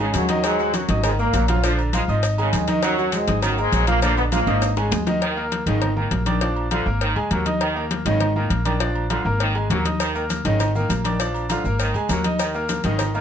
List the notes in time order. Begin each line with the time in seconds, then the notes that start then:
Already playing: G#1
0.00 C#3 G#3 D#4 G#4 G#5, high conga
0.14 D#2 F#2 F#3, cowbell, high conga, maracas
0.29 D#3 D#4 D#5, cowbell, high conga, low agogo, maracas
0.44 G#2 F#3 G#3, cowbell, low agogo, maracas
0.59 F#3 F#4 F#5, high conga, maracas
0.74 F#2 F#3, cowbell, high conga, low agogo, maracas
0.89 G#1 D#4 D#5 D#6, cowbell, high conga, maracas
1.04 G#2 D#3 G#3, cowbell, high conga, low conga, low agogo, maracas
1.19 A#2 A#3 A#4 A#5, high conga, maracas
1.33 A#1 F#3, cowbell, high conga, low timbale, low agogo, maracas
1.48 F#2 F3 F#3 F4 F5, cowbell, high conga, low agogo, maracas
1.63 D3 F3 D4 F4 D5, cowbell, high conga, maracas
1.79 low agogo, maracas
1.93 F3 G#3 F4 F5, cowbell, high conga, low agogo, maracas
2.08 G#1 F3 D#4 D#5 D#6, high conga, maracas
2.23 cowbell, high conga, low agogo, maracas
2.38 C#3 D#3 G#3 D#4 G#4 G#5, high conga, low agogo, maracas
2.53 D#2, cowbell, high conga, maracas
2.68 D#3 D#4 D#5, cowbell, high conga, low agogo, maracas
2.83 F#2 F#3, cowbell, high conga, low agogo, maracas
2.98 F#3 F#4 F#5, high conga, maracas
3.12 G#2 G#3, cowbell, high conga, low agogo, maracas
3.27 G#1 D#4 D#5 D#6, cowbell, high conga, maracas
3.42 F#2 D#3 F#3, cowbell, high conga, low conga, low agogo, maracas
3.58 G#2 G#3 A#3 A#4 A#5, high conga, maracas
3.72 A#1 F#3, cowbell, high conga, low agogo, maracas
3.87 A#2 F3 A#3 F4 F5, cowbell, high conga, low agogo, maracas
4.02 A#2 D3 F3 A#3 D4 D5, cowbell, high conga, maracas
4.17 B2 B3, high conga, low agogo, maracas
4.32 A#2 F3 G#3 A#3 F4 F5, cowbell, high conga, high timbale, low agogo, maracas
4.47 G#1 F3 D#4 D#5 D#6, high conga, high timbale, maracas
4.62 cowbell, high conga, high timbale, low agogo, maracas
4.76 C#3 G#3 G#4 G#5, high bongo, high conga, low agogo, maracas
4.91 D#2, cowbell, high bongo, high conga, low timbale, maracas
5.07 D#3 D#4 D#5, cowbell, low bongo, high conga, low timbale, low agogo, maracas
5.21 D#3, cowbell, high conga, low agogo
5.37 A#3 A#4 A#5, high conga
5.52 cowbell, high conga, low agogo
5.66 G#1 C#3 D#3 D#4 D#5, cowbell, high conga
5.81 cowbell, high conga, low conga, low agogo
5.96 D#3 A#3 A#4 A#5, high conga, low conga
6.11 A#1, cowbell, high conga, low timbale, low agogo
6.26 D#3 D4 D5 D6, cowbell, high conga, low agogo
6.41 F3 D4 D5, cowbell
6.56 low agogo
6.71 D3 F3 F4 F5, cowbell, high conga, low agogo
6.86 G#1 A#3 A#4 A#5, high conga
7.01 D#3, cowbell, high conga, low agogo
7.16 C#2 G#3 G#4 G#5, high conga, low agogo
7.31 D#2 F#3 A#3 A#4 A#5, cowbell, high conga
7.46 D#4 D#5 D#6, cowbell, high conga, low agogo
7.61 D#3, cowbell, high conga, low agogo
7.76 A#3 A#4 A#5, high conga
7.91 cowbell, high conga, low agogo
8.05 G#1 C#3 D#3 D#4 D#5, cowbell, high conga
8.20 cowbell, high conga, low conga, low agogo
8.36 D#3 A#3 A#4 A#5, high conga, low conga
8.50 A#1, cowbell, high conga, low agogo
8.65 D#3 D4 D5 D6, cowbell, high conga, low agogo
8.80 F3 D4 D5, cowbell
8.95 high conga, low agogo
9.10 D3 F3 F4 F5, cowbell, high conga, low agogo
9.25 G#1 A#3 A#4 A#5, high conga
9.40 D#3, cowbell, high conga, low agogo
9.55 G#3 G#4 G#5, high conga, low agogo
9.70 D#2 F#3 A#3 A#4 A#5, cowbell, high conga, low timbale
9.85 D#4 D#5 D#6, cowbell, high conga, low agogo
10.00 D#3, cowbell, high conga, low agogo, maracas
10.15 A#3 A#4 A#5, high conga, maracas
10.30 cowbell, high conga, low agogo, maracas
10.45 G#1 C#3 D#3 D#4 D#5, cowbell, high conga, maracas
10.60 cowbell, high conga, low conga, low agogo, maracas
10.75 D#3 A#3 A#4 A#5, high conga, low conga, maracas
10.89 A#1, cowbell, high conga, low timbale, low agogo, maracas
11.04 D#3 D4 D5 D6, cowbell, high conga, low agogo, maracas
11.20 F3 D4 D5, cowbell, maracas
11.34 high conga, low agogo, maracas
11.49 D3 F3 F4 F5, cowbell, high conga, low agogo, maracas
11.64 G#1 A#3 A#4 A#5, high conga, maracas
11.79 D#3, cowbell, high conga, low agogo, maracas
11.94 C#2 G#3 G#4 G#5, high conga, low agogo, maracas
12.09 D#2 F#3 A#3 A#4 A#5, cowbell, high conga, low timbale, maracas
12.24 D#4 D#5 D#6, cowbell, high conga, low agogo, maracas
12.39 D#3, cowbell, high conga, low agogo, maracas
12.54 A#3 A#4 A#5, maracas
12.69 cowbell, high conga, low agogo, maracas
12.84 G#1 C#3 D#3 D#4 D#5, cowbell, high conga, maracas
12.99 cowbell, high conga, low conga, low agogo, maracas
13.14 D#3 A#3 A#4 A#5, high conga, maracas